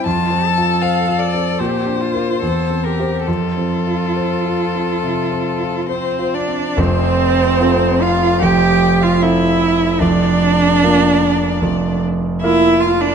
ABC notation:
X:1
M:4/4
L:1/16
Q:1/4=74
K:F
V:1 name="Violin"
a4 f2 d2 c6 B2 | A12 c2 d2 | c6 f2 g3 f e4 | d8- d2 z2 e2 f d |]
V:2 name="Cello"
F2 A6 G2 F2 A2 G2 | F12 C2 D2 | C6 F2 G3 F E4 | D8- D2 z2 E2 F D |]
V:3 name="Grand piano"
(3F,,2 C2 F2 (3c2 F2 C2 (3B,,2 D2 [FB]2 (3E,,2 C2 [Gc]2 | (3F,,2 C2 F2 (3c2 F2 C2 (3C,2 C2 F2 (3c2 F2 C2 | [F,,,F,,]4 [CFA]4 [F,,,F,,]4 [CFA]4 | [F,,,F,,]4 [B,FB]4 [F,,,F,,]4 [B,FB]4 |]